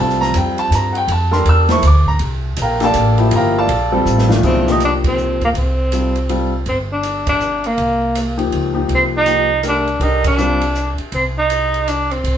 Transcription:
Already playing: C2 G3 C4 F4 A4
0.00 A5
0.09 snare
0.21 A#5, snare
0.34 F2 G5, hi-hat pedal, ride
0.58 A5, ride
0.71 G2, hi-hat pedal, ride
0.75 A#5
0.93 F#5, ride
0.97 G5
1.08 F2, ride
1.12 A5
1.31 D4 G4 A4 A#4 C6, snare
1.45 E2 E6, ride
1.69 A#3 E4 A4 C5 C#6, snare, ride
1.82 D2, hi-hat pedal, ride
1.87 D6
2.06 A#5, kick
2.19 C2, ride
2.56 A#1, hi-hat pedal, ride
2.62 A#4 F5 G5 A#5
2.80 A#3 D4 G4 A4 A5, snare, ride
2.84 A4 D5 F5
2.94 A1, hi-hat pedal, ride
3.18 F3 A#3 E4 G4, ride
3.31 G1, ride
3.36 A#4 F5 G5 A#5
3.58 A4 D5 F5 A5
3.67 A#1, ride
3.92 G3 C4 F4 A4
4.05 A1, hi-hat pedal
4.18 snare
4.28 A#2 D#3 A3 D4 F4, snare
4.43 C2 F#3 B3 C4 E4 G#4, kick, crash
4.67 F3 A#3 D#4 G4, snare
4.71 D#4
4.80 hi-hat pedal, ride
4.85 D4
5.04 C4, kick, ride
5.17 hi-hat pedal
5.41 A#3, kick, ride
5.54 C2 C4, ride
5.92 G3 C4 F4 A4, hi-hat pedal, ride
6.15 ride
6.29 G3 C4 F4 A4, ride
6.66 G1 C4, ride
6.93 D4
7.03 hi-hat pedal, ride
7.27 D4, kick, ride
7.40 hi-hat pedal
7.64 A#3, ride
7.78 C2, ride
8.15 hi-hat pedal, ride
8.37 F3 A#3 D#4 G4, ride
8.52 C#2, ride
8.74 F3 A#3 D#4 G4
8.88 C2, ride
8.95 C4
9.17 D#4
9.25 F3 A#3 D#4 G4, hi-hat pedal, ride
9.63 A3 D4 G4 A#4, hi-hat pedal, ride
9.68 D4
9.88 ride
10.00 C2 D4 D#4 G4 A4 A#4, ride
10.24 D4, kick, ride
10.38 G3 C4 F4 A4, hi-hat pedal
10.61 ride
10.75 hi-hat pedal
10.98 muted upright bass stroke, ride
11.12 C2 C4, ride
11.38 D#4
11.50 hi-hat pedal, ride
11.74 ride
11.88 D4, hi-hat pedal, ride
12.11 C4, ride
12.24 C2, ride

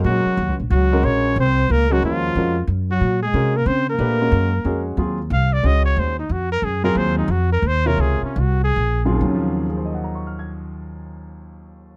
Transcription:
Already playing: G#3 C#4 F#4 A#4
0.04 A#2 F#3 F#4
0.26 muted upright bass stroke
0.37 D#2
0.48 C#2
0.60 A#1
0.70 C#2 F#3 F#4
0.92 G#3 C#4 F#4 A#4
1.03 A#1 C#4 C#5
1.36 C2 C4 C5
1.69 C#2 A#3 A#4
1.90 F#3 G#3 C#4 F#4 A#4
2.02 D#2 F3 F4
2.35 F2 G#3 C#4 F#4 A#4
2.67 F#2
2.91 F#3 F#4
3.01 A#2
3.22 G#3 G#4
3.34 C3 G#3 C#4 F#4 A#4
3.56 A#3 A#4
3.66 C#3 C4 C5
3.90 A#3 A#4
3.99 A#2 A3 D4 G4 B4
4.20 G#3 C#4 F#4 A#4
4.32 F#2
4.65 F2 G#3 C#4 F#4 G#4
4.97 D#2 F#3 C4 F4 G#4
5.30 C2 F5
5.53 D5
5.63 C#2 G#3 C#4 F#4 C#5 D#5
5.86 C#5
5.96 D#2 C5
6.19 D#4
6.29 F2 F#4
6.52 A#4
6.62 F#2 G#4
6.84 F#3 C4 F4 G#4 A#4
6.95 D#2 C5
7.18 D#4
7.28 F2 F#4
7.52 A#4
7.62 D#2
7.67 C5
7.86 C3 F4 A#4 C#5
7.97 C#2 G#4
8.22 C#4, muted upright bass stroke
8.36 C2 F#4
8.64 G#4
8.76 A#1
9.05 C#3 F#3 C4 F4 G#4
9.10 D#2
9.16 D#3
9.21 D#2 F#3
9.28 C#4
9.34 F3
9.69 G#4
9.77 C5
9.85 D#5
9.94 F#5
10.04 A#5
10.15 C#6
10.27 F6
10.39 G#6

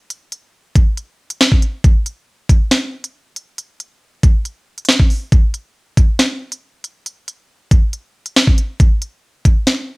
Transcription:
0.10 closed hi-hat
0.32 closed hi-hat
0.75 kick, closed hi-hat
0.97 closed hi-hat
1.30 closed hi-hat
1.41 snare
1.52 kick
1.62 closed hi-hat
1.84 kick, closed hi-hat
2.06 closed hi-hat
2.49 kick, closed hi-hat
2.71 snare, closed hi-hat
3.04 closed hi-hat
3.36 closed hi-hat
3.58 closed hi-hat
3.80 closed hi-hat
4.23 kick, closed hi-hat
4.45 closed hi-hat
4.78 closed hi-hat
4.85 snare, closed hi-hat
4.92 closed hi-hat
5.00 kick
5.10 open hi-hat
5.32 kick, closed hi-hat
5.54 closed hi-hat
5.97 kick, closed hi-hat
6.19 snare, closed hi-hat
6.52 closed hi-hat
6.84 closed hi-hat
7.06 closed hi-hat
7.28 closed hi-hat
7.71 kick, closed hi-hat
7.93 closed hi-hat
8.26 closed hi-hat
8.36 snare
8.47 kick
8.58 closed hi-hat
8.80 kick, closed hi-hat
9.02 closed hi-hat
9.45 kick, closed hi-hat
9.67 snare, closed hi-hat

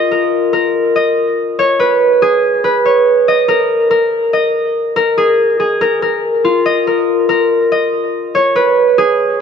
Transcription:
Already playing: F4 G#4 A#4 D#5
0.11 A#4
0.53 A#4
0.96 D#5
1.59 C#5
1.80 B4
2.22 G#4
2.64 B4
2.85 C#5
3.28 D#5
3.48 A#4
3.91 A#4
4.33 D#5
4.96 A#4
5.18 G#4
5.60 G#4
5.81 A#4
6.02 A#4
6.44 F4
6.66 D#5
6.87 A#4
7.29 A#4
7.72 D#5
8.35 C#5
8.56 B4
8.98 G#4

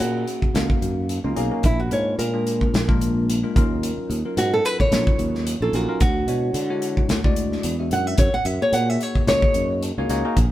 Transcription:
Already playing: F#3 A#3 C#4 D#4 G#4
0.00 A#2 F#4, closed hi-hat
0.28 closed hi-hat
0.42 muted fretless electric bass stroke, kick
0.54 C#2 F#3 A#3 C#4 D#4 F5, snare, closed hi-hat
0.70 muted fretless electric bass stroke, kick
0.82 F#2, closed hi-hat
1.09 closed hi-hat
1.24 C#2 F#3 A#3 C#4 D#4 F4
1.36 B1 F#3 A#3 C#4 D#4 G#4, closed hi-hat
1.51 F#3 A#3 C#4 D#4 A#4
1.63 A#1 E4, kick, closed hi-hat
1.80 F#4
1.91 G#2 G#3 A#3 D4 F4 A#4 C#5, closed hi-hat
2.19 A#2 A#4, closed hi-hat
2.33 G#3 A#3 D4 F4 G#4
2.47 closed hi-hat
2.61 kick
2.74 A#1, snare, closed hi-hat
2.88 G#3 A#3 D4 F4 A#4, kick
3.01 closed hi-hat
3.30 closed hi-hat
3.43 G#3 A#3 D4 F4 A#4
3.56 D#2 F#3 C#4 D#4 F4 A#4, kick, closed hi-hat
3.83 closed hi-hat
3.98 muted fretless electric bass stroke
4.10 D#2, closed hi-hat
4.25 F#3 C#4 D#4 F4 A#4
4.37 G#2 F#4, closed hi-hat
4.54 A4
4.65 B4, closed hi-hat
4.80 C#5, muted fretless electric bass stroke, kick
4.92 A#1 F#3 C#4 D#4 F4 C#5, snare, closed hi-hat
5.07 kick
5.19 D#2, closed hi-hat
5.35 snare
5.47 closed hi-hat
5.61 A#1 F#3 C#4 D#4 F4 A4 C#5
5.73 A#1 F#3 C#4 D#4 F4 F#4 A#4, closed hi-hat
5.88 F#3 C#4 D#4 F4 A#4
6.00 D2 F#4, kick, closed hi-hat
6.27 B2 G#3 D4 E4 F#4 C#5, closed hi-hat
6.54 D3, closed hi-hat
6.70 G#3 D4 E4 F#4 C#5
6.82 closed hi-hat
6.97 kick
7.09 D2, snare, closed hi-hat
7.24 G#3 D4 E4 F#4 D5, kick
7.36 closed hi-hat
7.52 snare
7.63 E2, closed hi-hat
7.79 G#3 D4 E4 F#4 E5
7.91 F#2 F#5, closed hi-hat
8.07 E5
8.18 F#2 C#5, kick, closed hi-hat
8.33 F#5, muted fretless electric bass stroke
8.45 F#2 E5, closed hi-hat
8.61 A#3 D#4 F#4 G#4 C#5
8.72 A#2 F#5, closed hi-hat
8.90 E5
9.01 C#5, closed hi-hat
9.15 muted fretless electric bass stroke, kick
9.27 C#2 A#3 D#4 F#4 G#4 C#5 D#5, snare, closed hi-hat
9.42 muted fretless electric bass stroke, kick
9.54 F#2, closed hi-hat
9.83 closed hi-hat
9.98 C#2 A#3 D#4 F#4 G#4 C#5
10.09 C#2 A#3 D#4 F#4 G#4 C#5, closed hi-hat
10.25 A#3 D#4 F#4 G#4 A#4
10.37 A#1, kick, closed hi-hat

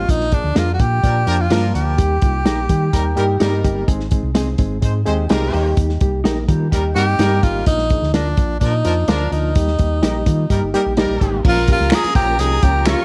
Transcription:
Already playing: F4
0.08 A#1 F3 A#3 D4 D#4 F4, kick, closed hi-hat
0.20 snare
0.32 F3 A#3 D4 G#4, kick, closed hi-hat
0.44 D2
0.55 F2 F3 A#3 D4 F4 G#4 A#4, snare, closed hi-hat
0.74 F#4
0.79 A#2 F3 A#3 D4 F4 G4, kick, closed hi-hat
1.03 A#2 F3 A#3 D4 F4 A#4 D5, kick, closed hi-hat
1.27 F2 F3 A#3 D4 F4 A#4, closed hi-hat
1.41 F4
1.50 G2 F3 A#3 D4 F4 A#4, snare, closed hi-hat
1.74 D2 F3 A#3 D4 F4 G4, closed hi-hat
1.98 D#2 G3 A#3 D#4 G4, kick, closed hi-hat
2.22 C2 G3 A#3 D#4 F4, kick, closed hi-hat
2.45 A#1 G3 A#3 D#4 G4 A#4, snare, closed hi-hat
2.69 D#3 G3 A#3 D#4 G4, kick, closed hi-hat
2.92 D#2 G3 A#3 D#4 G4 A#4, kick, closed hi-hat
3.16 G2 G3 A#3 D#4 G4 A#4, closed hi-hat
3.40 G2 G3 A#3 C4 D#4 G4 A#4, snare, closed hi-hat
3.64 G1 G3 A#3 D#4 G4, kick, closed hi-hat
3.88 G#1 G#3 C4 D#4 G#4, kick, closed hi-hat
4.00 snare
4.11 G#3 C4 D#4 G#4, kick, closed hi-hat
4.23 C2
4.35 G#3 C4 D#4 G#4, snare, closed hi-hat
4.58 G#1 G#3 C4 D#4 G#4, kick, closed hi-hat
4.81 G#2 G#3 C4 D#4 G#4 C5, kick, closed hi-hat
5.06 D#2 G#3 C4 D#4 G4 G#4 C5, closed hi-hat
5.29 C2 G3 G#3 C4 D#4 F4 G4 G#4 A#4, snare, closed hi-hat
5.53 D#2 G3 A#3 D#4 G4, open hi-hat
5.77 D#2, kick, closed hi-hat
5.89 snare
6.01 C2 G3 A#3 D#4 G4, kick, closed hi-hat
6.24 A#1 G3 A#3 D#4 G4 A#4, snare, closed hi-hat
6.48 D#3 G3 A#3 D#4 F4 G4 A#4, kick, closed hi-hat
6.71 D#2 G3 A#3 D#4 G4 A#4, kick, closed hi-hat
6.95 G2 G3 A#3 C4 D#4 G4 A#4, closed hi-hat
7.19 G2 G3 A#3 D#4 G4 A#4, snare, closed hi-hat
7.43 G#1 G3 A#3 D#4 F4 G4, kick, closed hi-hat
7.66 A#1 F3 A#3 D4 D#4 F4, kick, closed hi-hat
7.78 snare
7.90 F3 A#3 D4 G#4, kick, closed hi-hat
8.02 D2, snare
8.14 F3 A#3 D4 F4 A#4, snare, closed hi-hat
8.37 A#1 F3 A#3 D4 F4, kick, closed hi-hat
8.60 A#2 F3 A#3 D4 D#4 F4 A#4, kick, closed hi-hat
8.84 F2 F3 A#3 D4 F4 A#4, closed hi-hat
9.08 D2 F3 A#3 D4 F4 A#4, snare, closed hi-hat
9.31 D2 F3 A#3 D4 D#4 F4, closed hi-hat
9.55 D#2 G3 A#3 D#4 G4, kick, closed hi-hat
9.67 snare
9.79 D#2 G3 A#3 D#4 G4, kick, closed hi-hat
10.02 A#1 G3 A#3 D#4 G4 A#4, snare, closed hi-hat
10.26 D#3 G3 A#3 D#4 F4, kick, closed hi-hat
10.50 G2 G3 A#3 D#4 G4 A#4, kick, closed hi-hat
10.62 G1
10.74 G3 A#3 D#4 G4 A#4, closed hi-hat
10.86 A#1
10.97 G3 A#3 D#4 G4 A#4, snare, closed hi-hat
11.10 A#1
11.21 G#1 G3 A#3 D#4 G4, kick, closed hi-hat
11.45 A#1 F3 A#3 C#4 F4 A#4 A#5, kick, crash
11.56 snare
11.67 F3 A#3 C#4 G4, kick, closed hi-hat
11.72 F4
11.80 C#2, snare
11.90 F3 A#3 C#4 F4 G#4 A#4, finger snap, snare, closed hi-hat
11.95 G#4
12.04 muted fingered electric bass stroke, closed hi-hat
12.15 A#1 F3 A#3 C#4 F4 G4, kick, closed hi-hat
12.39 C2 F3 A#3 C#4 D#4 F4 G4 G#4, closed hi-hat
12.62 C#2 F3 A#3 C#4 F4 G4, kick, closed hi-hat
12.85 F3 A#3 C#4 F4 G4 A#4 C#5 C#6, finger snap, snare, closed hi-hat

